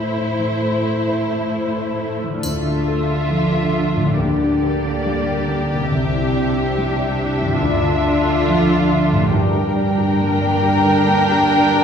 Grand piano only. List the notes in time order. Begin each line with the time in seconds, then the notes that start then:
Already playing: A2 A3 E4 C5
0.17 E4
0.39 E3
0.61 A3
0.84 E4
1.08 C5
1.54 A3
1.76 C5
1.99 E4
2.23 E3
2.44 D2
2.65 E5
2.88 A4
3.10 E5
3.30 F3
3.53 A4
3.74 E5
3.96 A2
4.18 D2
4.40 D4
4.64 A#4
4.85 D4
5.06 G3
5.27 A#4
5.49 D4
5.71 D3
5.91 C2
6.14 E4
6.36 D5
6.57 E4
6.78 G3
6.98 D5
7.21 E4
7.41 G2
7.62 D2
7.83 E5
8.05 D5
8.26 E5
8.48 F3
8.69 D5
8.91 E5
9.13 A2
9.33 G2
9.54 G4
9.75 D5
9.98 G4
10.20 A#3
10.41 D5
10.63 G4
10.84 D3
11.07 A#3
11.29 G4
11.51 D5
11.74 G4